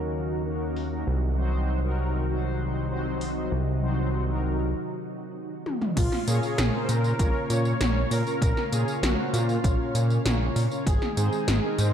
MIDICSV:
0, 0, Header, 1, 6, 480
1, 0, Start_track
1, 0, Key_signature, -5, "minor"
1, 0, Tempo, 612245
1, 838, Time_signature, 4, 2, 24, 8
1, 9356, End_track
2, 0, Start_track
2, 0, Title_t, "Supersaw synth"
2, 0, Program_c, 0, 81
2, 4679, Note_on_c, 0, 65, 98
2, 4918, Note_on_c, 0, 68, 101
2, 4926, Note_off_c, 0, 65, 0
2, 5347, Note_on_c, 0, 72, 75
2, 5356, Note_off_c, 0, 68, 0
2, 5400, Note_off_c, 0, 72, 0
2, 5400, Note_on_c, 0, 70, 105
2, 5628, Note_off_c, 0, 70, 0
2, 5638, Note_on_c, 0, 70, 117
2, 5877, Note_on_c, 0, 73, 108
2, 5885, Note_off_c, 0, 70, 0
2, 6108, Note_off_c, 0, 73, 0
2, 6118, Note_on_c, 0, 73, 115
2, 6357, Note_on_c, 0, 70, 109
2, 6365, Note_off_c, 0, 73, 0
2, 6581, Note_off_c, 0, 70, 0
2, 6598, Note_on_c, 0, 70, 113
2, 6839, Note_on_c, 0, 68, 96
2, 6845, Note_off_c, 0, 70, 0
2, 7062, Note_off_c, 0, 68, 0
2, 7078, Note_on_c, 0, 66, 100
2, 7318, Note_on_c, 0, 65, 94
2, 7325, Note_off_c, 0, 66, 0
2, 7767, Note_off_c, 0, 65, 0
2, 8519, Note_on_c, 0, 68, 104
2, 8751, Note_off_c, 0, 68, 0
2, 8760, Note_on_c, 0, 68, 109
2, 9208, Note_off_c, 0, 68, 0
2, 9242, Note_on_c, 0, 72, 111
2, 9356, Note_off_c, 0, 72, 0
2, 9356, End_track
3, 0, Start_track
3, 0, Title_t, "Analog polysynth"
3, 0, Program_c, 1, 90
3, 0, Note_on_c, 1, 58, 79
3, 0, Note_on_c, 1, 61, 74
3, 0, Note_on_c, 1, 63, 74
3, 0, Note_on_c, 1, 66, 72
3, 0, Note_on_c, 1, 70, 88
3, 330, Note_off_c, 1, 58, 0
3, 330, Note_off_c, 1, 61, 0
3, 330, Note_off_c, 1, 63, 0
3, 330, Note_off_c, 1, 70, 0
3, 331, Note_off_c, 1, 66, 0
3, 359, Note_on_c, 1, 70, 89
3, 360, Note_on_c, 1, 58, 81
3, 360, Note_on_c, 1, 61, 81
3, 360, Note_on_c, 1, 63, 77
3, 360, Note_on_c, 1, 66, 75
3, 690, Note_off_c, 1, 58, 0
3, 690, Note_off_c, 1, 61, 0
3, 690, Note_off_c, 1, 63, 0
3, 690, Note_off_c, 1, 66, 0
3, 690, Note_off_c, 1, 70, 0
3, 720, Note_on_c, 1, 58, 80
3, 720, Note_on_c, 1, 61, 71
3, 720, Note_on_c, 1, 63, 73
3, 720, Note_on_c, 1, 66, 72
3, 720, Note_on_c, 1, 70, 89
3, 825, Note_off_c, 1, 58, 0
3, 825, Note_off_c, 1, 61, 0
3, 825, Note_off_c, 1, 63, 0
3, 825, Note_off_c, 1, 66, 0
3, 825, Note_off_c, 1, 70, 0
3, 1079, Note_on_c, 1, 54, 95
3, 1079, Note_on_c, 1, 60, 88
3, 1079, Note_on_c, 1, 63, 87
3, 1079, Note_on_c, 1, 66, 90
3, 1079, Note_on_c, 1, 72, 111
3, 1410, Note_off_c, 1, 54, 0
3, 1410, Note_off_c, 1, 60, 0
3, 1410, Note_off_c, 1, 63, 0
3, 1410, Note_off_c, 1, 66, 0
3, 1410, Note_off_c, 1, 72, 0
3, 1438, Note_on_c, 1, 54, 88
3, 1438, Note_on_c, 1, 66, 82
3, 1438, Note_on_c, 1, 70, 96
3, 1439, Note_on_c, 1, 60, 80
3, 1439, Note_on_c, 1, 63, 82
3, 1770, Note_off_c, 1, 54, 0
3, 1770, Note_off_c, 1, 60, 0
3, 1770, Note_off_c, 1, 63, 0
3, 1770, Note_off_c, 1, 66, 0
3, 1770, Note_off_c, 1, 70, 0
3, 1799, Note_on_c, 1, 54, 82
3, 1799, Note_on_c, 1, 60, 73
3, 1799, Note_on_c, 1, 63, 76
3, 1799, Note_on_c, 1, 66, 72
3, 1799, Note_on_c, 1, 72, 92
3, 2250, Note_off_c, 1, 54, 0
3, 2250, Note_off_c, 1, 60, 0
3, 2250, Note_off_c, 1, 63, 0
3, 2250, Note_off_c, 1, 66, 0
3, 2250, Note_off_c, 1, 72, 0
3, 2278, Note_on_c, 1, 54, 87
3, 2278, Note_on_c, 1, 60, 77
3, 2278, Note_on_c, 1, 63, 76
3, 2278, Note_on_c, 1, 66, 76
3, 2278, Note_on_c, 1, 72, 96
3, 2609, Note_off_c, 1, 54, 0
3, 2609, Note_off_c, 1, 60, 0
3, 2609, Note_off_c, 1, 63, 0
3, 2609, Note_off_c, 1, 72, 0
3, 2610, Note_off_c, 1, 66, 0
3, 2637, Note_on_c, 1, 54, 81
3, 2637, Note_on_c, 1, 60, 71
3, 2637, Note_on_c, 1, 63, 74
3, 2637, Note_on_c, 1, 66, 73
3, 2637, Note_on_c, 1, 72, 88
3, 2749, Note_off_c, 1, 54, 0
3, 2749, Note_off_c, 1, 60, 0
3, 2749, Note_off_c, 1, 63, 0
3, 2749, Note_off_c, 1, 66, 0
3, 2749, Note_off_c, 1, 72, 0
3, 2997, Note_on_c, 1, 54, 94
3, 2997, Note_on_c, 1, 63, 92
3, 2997, Note_on_c, 1, 66, 90
3, 2997, Note_on_c, 1, 72, 103
3, 2998, Note_on_c, 1, 60, 89
3, 3329, Note_off_c, 1, 54, 0
3, 3329, Note_off_c, 1, 60, 0
3, 3329, Note_off_c, 1, 63, 0
3, 3329, Note_off_c, 1, 66, 0
3, 3329, Note_off_c, 1, 72, 0
3, 3357, Note_on_c, 1, 66, 81
3, 3358, Note_on_c, 1, 54, 85
3, 3358, Note_on_c, 1, 60, 80
3, 3358, Note_on_c, 1, 63, 80
3, 3358, Note_on_c, 1, 70, 98
3, 3689, Note_off_c, 1, 66, 0
3, 3689, Note_off_c, 1, 70, 0
3, 3690, Note_off_c, 1, 54, 0
3, 3690, Note_off_c, 1, 60, 0
3, 3690, Note_off_c, 1, 63, 0
3, 4919, Note_on_c, 1, 58, 97
3, 4919, Note_on_c, 1, 61, 95
3, 4919, Note_on_c, 1, 65, 91
3, 4919, Note_on_c, 1, 70, 93
3, 4919, Note_on_c, 1, 73, 112
3, 5250, Note_off_c, 1, 58, 0
3, 5250, Note_off_c, 1, 61, 0
3, 5250, Note_off_c, 1, 65, 0
3, 5250, Note_off_c, 1, 70, 0
3, 5250, Note_off_c, 1, 73, 0
3, 5279, Note_on_c, 1, 58, 90
3, 5279, Note_on_c, 1, 61, 82
3, 5279, Note_on_c, 1, 65, 84
3, 5279, Note_on_c, 1, 70, 84
3, 5279, Note_on_c, 1, 72, 97
3, 5610, Note_off_c, 1, 58, 0
3, 5610, Note_off_c, 1, 61, 0
3, 5610, Note_off_c, 1, 65, 0
3, 5610, Note_off_c, 1, 70, 0
3, 5610, Note_off_c, 1, 72, 0
3, 5640, Note_on_c, 1, 58, 82
3, 5640, Note_on_c, 1, 61, 78
3, 5640, Note_on_c, 1, 65, 76
3, 5640, Note_on_c, 1, 70, 79
3, 5640, Note_on_c, 1, 73, 91
3, 6090, Note_off_c, 1, 58, 0
3, 6090, Note_off_c, 1, 61, 0
3, 6090, Note_off_c, 1, 73, 0
3, 6091, Note_off_c, 1, 65, 0
3, 6091, Note_off_c, 1, 70, 0
3, 6119, Note_on_c, 1, 65, 80
3, 6120, Note_on_c, 1, 58, 90
3, 6120, Note_on_c, 1, 61, 84
3, 6120, Note_on_c, 1, 70, 83
3, 6120, Note_on_c, 1, 73, 97
3, 6450, Note_off_c, 1, 58, 0
3, 6450, Note_off_c, 1, 65, 0
3, 6450, Note_off_c, 1, 70, 0
3, 6450, Note_off_c, 1, 73, 0
3, 6451, Note_off_c, 1, 61, 0
3, 6479, Note_on_c, 1, 58, 84
3, 6479, Note_on_c, 1, 61, 79
3, 6479, Note_on_c, 1, 70, 78
3, 6480, Note_on_c, 1, 65, 76
3, 6480, Note_on_c, 1, 73, 90
3, 6590, Note_off_c, 1, 58, 0
3, 6590, Note_off_c, 1, 61, 0
3, 6590, Note_off_c, 1, 65, 0
3, 6590, Note_off_c, 1, 70, 0
3, 6590, Note_off_c, 1, 73, 0
3, 6840, Note_on_c, 1, 58, 99
3, 6840, Note_on_c, 1, 61, 91
3, 6840, Note_on_c, 1, 65, 90
3, 6840, Note_on_c, 1, 70, 91
3, 6840, Note_on_c, 1, 73, 108
3, 7170, Note_off_c, 1, 58, 0
3, 7170, Note_off_c, 1, 61, 0
3, 7170, Note_off_c, 1, 70, 0
3, 7170, Note_off_c, 1, 73, 0
3, 7171, Note_off_c, 1, 65, 0
3, 7198, Note_on_c, 1, 58, 93
3, 7198, Note_on_c, 1, 61, 84
3, 7198, Note_on_c, 1, 65, 81
3, 7198, Note_on_c, 1, 70, 82
3, 7198, Note_on_c, 1, 72, 99
3, 7529, Note_off_c, 1, 58, 0
3, 7529, Note_off_c, 1, 70, 0
3, 7530, Note_off_c, 1, 61, 0
3, 7530, Note_off_c, 1, 65, 0
3, 7530, Note_off_c, 1, 72, 0
3, 7558, Note_on_c, 1, 58, 83
3, 7558, Note_on_c, 1, 70, 77
3, 7559, Note_on_c, 1, 61, 77
3, 7559, Note_on_c, 1, 65, 80
3, 7559, Note_on_c, 1, 73, 93
3, 8010, Note_off_c, 1, 58, 0
3, 8010, Note_off_c, 1, 61, 0
3, 8010, Note_off_c, 1, 65, 0
3, 8010, Note_off_c, 1, 70, 0
3, 8010, Note_off_c, 1, 73, 0
3, 8039, Note_on_c, 1, 61, 83
3, 8040, Note_on_c, 1, 58, 90
3, 8040, Note_on_c, 1, 65, 80
3, 8040, Note_on_c, 1, 70, 82
3, 8040, Note_on_c, 1, 73, 98
3, 8370, Note_off_c, 1, 58, 0
3, 8370, Note_off_c, 1, 61, 0
3, 8370, Note_off_c, 1, 65, 0
3, 8370, Note_off_c, 1, 70, 0
3, 8370, Note_off_c, 1, 73, 0
3, 8399, Note_on_c, 1, 61, 76
3, 8399, Note_on_c, 1, 65, 76
3, 8399, Note_on_c, 1, 70, 76
3, 8400, Note_on_c, 1, 58, 82
3, 8400, Note_on_c, 1, 73, 92
3, 8504, Note_off_c, 1, 65, 0
3, 8504, Note_off_c, 1, 70, 0
3, 8505, Note_off_c, 1, 58, 0
3, 8505, Note_off_c, 1, 61, 0
3, 8505, Note_off_c, 1, 73, 0
3, 8759, Note_on_c, 1, 56, 103
3, 8759, Note_on_c, 1, 60, 93
3, 8759, Note_on_c, 1, 63, 90
3, 8759, Note_on_c, 1, 68, 93
3, 8759, Note_on_c, 1, 72, 108
3, 9090, Note_off_c, 1, 56, 0
3, 9090, Note_off_c, 1, 60, 0
3, 9090, Note_off_c, 1, 63, 0
3, 9090, Note_off_c, 1, 68, 0
3, 9090, Note_off_c, 1, 72, 0
3, 9119, Note_on_c, 1, 56, 90
3, 9119, Note_on_c, 1, 70, 101
3, 9120, Note_on_c, 1, 60, 84
3, 9120, Note_on_c, 1, 63, 80
3, 9120, Note_on_c, 1, 68, 81
3, 9356, Note_off_c, 1, 56, 0
3, 9356, Note_off_c, 1, 60, 0
3, 9356, Note_off_c, 1, 63, 0
3, 9356, Note_off_c, 1, 68, 0
3, 9356, Note_off_c, 1, 70, 0
3, 9356, End_track
4, 0, Start_track
4, 0, Title_t, "Analog synth pad"
4, 0, Program_c, 2, 89
4, 0, Note_on_c, 2, 49, 78
4, 0, Note_on_c, 2, 54, 70
4, 0, Note_on_c, 2, 58, 69
4, 0, Note_on_c, 2, 63, 88
4, 0, Note_on_c, 2, 66, 84
4, 807, Note_off_c, 2, 49, 0
4, 807, Note_off_c, 2, 58, 0
4, 808, Note_off_c, 2, 63, 0
4, 837, Note_on_c, 2, 63, 73
4, 838, Note_on_c, 2, 48, 76
4, 838, Note_on_c, 2, 51, 73
4, 4646, Note_off_c, 2, 54, 0
4, 4647, Note_off_c, 2, 48, 0
4, 4647, Note_off_c, 2, 51, 0
4, 4647, Note_off_c, 2, 63, 0
4, 4647, Note_off_c, 2, 66, 0
4, 4680, Note_on_c, 2, 61, 73
4, 4680, Note_on_c, 2, 77, 90
4, 4681, Note_on_c, 2, 46, 79
4, 4681, Note_on_c, 2, 49, 74
4, 8488, Note_off_c, 2, 49, 0
4, 8488, Note_off_c, 2, 61, 0
4, 8488, Note_off_c, 2, 77, 0
4, 8489, Note_off_c, 2, 46, 0
4, 8519, Note_on_c, 2, 48, 81
4, 8519, Note_on_c, 2, 63, 76
4, 8519, Note_on_c, 2, 68, 89
4, 8520, Note_on_c, 2, 51, 74
4, 8520, Note_on_c, 2, 56, 77
4, 9356, Note_off_c, 2, 48, 0
4, 9356, Note_off_c, 2, 51, 0
4, 9356, Note_off_c, 2, 56, 0
4, 9356, Note_off_c, 2, 63, 0
4, 9356, Note_off_c, 2, 68, 0
4, 9356, End_track
5, 0, Start_track
5, 0, Title_t, "Analog synth bass"
5, 0, Program_c, 3, 38
5, 0, Note_on_c, 3, 39, 83
5, 815, Note_off_c, 3, 39, 0
5, 838, Note_on_c, 3, 36, 84
5, 2734, Note_off_c, 3, 36, 0
5, 2757, Note_on_c, 3, 36, 84
5, 3718, Note_off_c, 3, 36, 0
5, 4678, Note_on_c, 3, 34, 101
5, 4773, Note_off_c, 3, 34, 0
5, 4920, Note_on_c, 3, 46, 87
5, 5014, Note_off_c, 3, 46, 0
5, 5160, Note_on_c, 3, 34, 95
5, 5254, Note_off_c, 3, 34, 0
5, 5401, Note_on_c, 3, 46, 99
5, 5590, Note_off_c, 3, 46, 0
5, 5639, Note_on_c, 3, 34, 88
5, 5734, Note_off_c, 3, 34, 0
5, 5880, Note_on_c, 3, 46, 87
5, 6069, Note_off_c, 3, 46, 0
5, 6119, Note_on_c, 3, 34, 91
5, 6309, Note_off_c, 3, 34, 0
5, 6359, Note_on_c, 3, 46, 85
5, 6454, Note_off_c, 3, 46, 0
5, 6598, Note_on_c, 3, 34, 98
5, 6693, Note_off_c, 3, 34, 0
5, 6839, Note_on_c, 3, 46, 80
5, 6934, Note_off_c, 3, 46, 0
5, 7078, Note_on_c, 3, 34, 92
5, 7173, Note_off_c, 3, 34, 0
5, 7318, Note_on_c, 3, 46, 101
5, 7508, Note_off_c, 3, 46, 0
5, 7558, Note_on_c, 3, 34, 87
5, 7653, Note_off_c, 3, 34, 0
5, 7798, Note_on_c, 3, 46, 88
5, 7989, Note_off_c, 3, 46, 0
5, 8038, Note_on_c, 3, 34, 96
5, 8228, Note_off_c, 3, 34, 0
5, 8278, Note_on_c, 3, 46, 90
5, 8373, Note_off_c, 3, 46, 0
5, 8518, Note_on_c, 3, 32, 96
5, 8613, Note_off_c, 3, 32, 0
5, 8758, Note_on_c, 3, 44, 85
5, 8853, Note_off_c, 3, 44, 0
5, 8997, Note_on_c, 3, 32, 91
5, 9093, Note_off_c, 3, 32, 0
5, 9238, Note_on_c, 3, 44, 98
5, 9356, Note_off_c, 3, 44, 0
5, 9356, End_track
6, 0, Start_track
6, 0, Title_t, "Drums"
6, 599, Note_on_c, 9, 46, 74
6, 678, Note_off_c, 9, 46, 0
6, 2518, Note_on_c, 9, 46, 76
6, 2597, Note_off_c, 9, 46, 0
6, 4439, Note_on_c, 9, 48, 59
6, 4517, Note_off_c, 9, 48, 0
6, 4560, Note_on_c, 9, 47, 70
6, 4638, Note_off_c, 9, 47, 0
6, 4679, Note_on_c, 9, 36, 114
6, 4680, Note_on_c, 9, 42, 99
6, 4680, Note_on_c, 9, 49, 106
6, 4680, Note_on_c, 9, 54, 40
6, 4757, Note_off_c, 9, 36, 0
6, 4758, Note_off_c, 9, 42, 0
6, 4758, Note_off_c, 9, 49, 0
6, 4758, Note_off_c, 9, 54, 0
6, 4800, Note_on_c, 9, 38, 38
6, 4879, Note_off_c, 9, 38, 0
6, 4920, Note_on_c, 9, 42, 66
6, 4920, Note_on_c, 9, 54, 68
6, 4999, Note_off_c, 9, 42, 0
6, 4999, Note_off_c, 9, 54, 0
6, 5041, Note_on_c, 9, 54, 30
6, 5119, Note_off_c, 9, 54, 0
6, 5161, Note_on_c, 9, 38, 119
6, 5161, Note_on_c, 9, 42, 102
6, 5161, Note_on_c, 9, 54, 41
6, 5239, Note_off_c, 9, 38, 0
6, 5239, Note_off_c, 9, 42, 0
6, 5239, Note_off_c, 9, 54, 0
6, 5400, Note_on_c, 9, 42, 66
6, 5400, Note_on_c, 9, 54, 67
6, 5479, Note_off_c, 9, 42, 0
6, 5479, Note_off_c, 9, 54, 0
6, 5521, Note_on_c, 9, 54, 29
6, 5599, Note_off_c, 9, 54, 0
6, 5639, Note_on_c, 9, 36, 126
6, 5641, Note_on_c, 9, 42, 91
6, 5641, Note_on_c, 9, 54, 39
6, 5717, Note_off_c, 9, 36, 0
6, 5719, Note_off_c, 9, 42, 0
6, 5719, Note_off_c, 9, 54, 0
6, 5880, Note_on_c, 9, 42, 67
6, 5880, Note_on_c, 9, 54, 68
6, 5958, Note_off_c, 9, 42, 0
6, 5958, Note_off_c, 9, 54, 0
6, 6000, Note_on_c, 9, 54, 31
6, 6078, Note_off_c, 9, 54, 0
6, 6120, Note_on_c, 9, 38, 118
6, 6120, Note_on_c, 9, 42, 99
6, 6120, Note_on_c, 9, 54, 39
6, 6199, Note_off_c, 9, 38, 0
6, 6199, Note_off_c, 9, 42, 0
6, 6199, Note_off_c, 9, 54, 0
6, 6360, Note_on_c, 9, 46, 81
6, 6360, Note_on_c, 9, 54, 69
6, 6439, Note_off_c, 9, 46, 0
6, 6439, Note_off_c, 9, 54, 0
6, 6481, Note_on_c, 9, 54, 32
6, 6560, Note_off_c, 9, 54, 0
6, 6599, Note_on_c, 9, 36, 127
6, 6602, Note_on_c, 9, 42, 101
6, 6602, Note_on_c, 9, 54, 38
6, 6677, Note_off_c, 9, 36, 0
6, 6680, Note_off_c, 9, 42, 0
6, 6680, Note_off_c, 9, 54, 0
6, 6720, Note_on_c, 9, 38, 40
6, 6799, Note_off_c, 9, 38, 0
6, 6840, Note_on_c, 9, 42, 67
6, 6840, Note_on_c, 9, 54, 63
6, 6919, Note_off_c, 9, 42, 0
6, 6919, Note_off_c, 9, 54, 0
6, 6962, Note_on_c, 9, 54, 30
6, 7040, Note_off_c, 9, 54, 0
6, 7081, Note_on_c, 9, 38, 124
6, 7081, Note_on_c, 9, 42, 102
6, 7081, Note_on_c, 9, 54, 39
6, 7159, Note_off_c, 9, 38, 0
6, 7159, Note_off_c, 9, 42, 0
6, 7159, Note_off_c, 9, 54, 0
6, 7321, Note_on_c, 9, 42, 69
6, 7321, Note_on_c, 9, 54, 65
6, 7399, Note_off_c, 9, 42, 0
6, 7399, Note_off_c, 9, 54, 0
6, 7440, Note_on_c, 9, 54, 28
6, 7518, Note_off_c, 9, 54, 0
6, 7558, Note_on_c, 9, 36, 127
6, 7561, Note_on_c, 9, 42, 94
6, 7561, Note_on_c, 9, 54, 36
6, 7637, Note_off_c, 9, 36, 0
6, 7639, Note_off_c, 9, 42, 0
6, 7639, Note_off_c, 9, 54, 0
6, 7801, Note_on_c, 9, 42, 67
6, 7801, Note_on_c, 9, 54, 68
6, 7879, Note_off_c, 9, 42, 0
6, 7879, Note_off_c, 9, 54, 0
6, 7920, Note_on_c, 9, 54, 29
6, 7999, Note_off_c, 9, 54, 0
6, 8040, Note_on_c, 9, 38, 121
6, 8040, Note_on_c, 9, 42, 94
6, 8040, Note_on_c, 9, 54, 39
6, 8119, Note_off_c, 9, 38, 0
6, 8119, Note_off_c, 9, 42, 0
6, 8119, Note_off_c, 9, 54, 0
6, 8280, Note_on_c, 9, 46, 83
6, 8280, Note_on_c, 9, 54, 69
6, 8358, Note_off_c, 9, 46, 0
6, 8358, Note_off_c, 9, 54, 0
6, 8400, Note_on_c, 9, 54, 29
6, 8478, Note_off_c, 9, 54, 0
6, 8518, Note_on_c, 9, 36, 124
6, 8521, Note_on_c, 9, 42, 97
6, 8521, Note_on_c, 9, 54, 37
6, 8596, Note_off_c, 9, 36, 0
6, 8599, Note_off_c, 9, 42, 0
6, 8599, Note_off_c, 9, 54, 0
6, 8639, Note_on_c, 9, 38, 40
6, 8718, Note_off_c, 9, 38, 0
6, 8759, Note_on_c, 9, 42, 68
6, 8759, Note_on_c, 9, 54, 64
6, 8837, Note_off_c, 9, 42, 0
6, 8837, Note_off_c, 9, 54, 0
6, 8879, Note_on_c, 9, 54, 29
6, 8958, Note_off_c, 9, 54, 0
6, 8999, Note_on_c, 9, 38, 127
6, 8999, Note_on_c, 9, 42, 97
6, 8999, Note_on_c, 9, 54, 37
6, 9078, Note_off_c, 9, 38, 0
6, 9078, Note_off_c, 9, 42, 0
6, 9078, Note_off_c, 9, 54, 0
6, 9239, Note_on_c, 9, 42, 65
6, 9239, Note_on_c, 9, 54, 65
6, 9318, Note_off_c, 9, 42, 0
6, 9318, Note_off_c, 9, 54, 0
6, 9356, End_track
0, 0, End_of_file